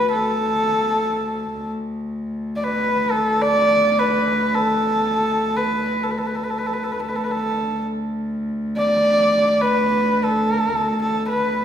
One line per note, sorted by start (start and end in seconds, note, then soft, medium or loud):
0.00 1.53 D2 medium
0.11 1.70 A4 medium
1.54 7.03 D2 medium
2.56 2.65 D5 medium
2.64 3.12 B4 medium
3.11 3.43 A4 medium
3.42 4.00 D5 medium
3.99 4.56 B4 medium
4.54 5.58 A4 medium
5.56 6.04 B4 medium
6.03 6.12 A4 medium
6.11 6.19 B4 soft
6.18 6.28 A4 medium
6.26 6.37 B4 soft
6.35 6.45 A4 soft
6.43 6.52 B4 soft
6.50 6.60 A4 medium
6.58 6.68 B4 medium
6.66 6.75 A4 medium
6.73 6.85 B4 medium
6.84 6.93 A4 medium
6.92 7.01 B4 medium
7.00 7.10 A4 medium
7.04 11.65 D2 medium
7.08 7.17 B4 medium
7.15 7.25 A4 medium
7.24 7.33 B4 medium
7.31 7.83 A4 medium
8.77 9.63 D5 medium
9.62 10.26 B4 medium
10.24 11.01 A4 medium
11.02 11.28 A4 medium
11.29 11.65 B4 medium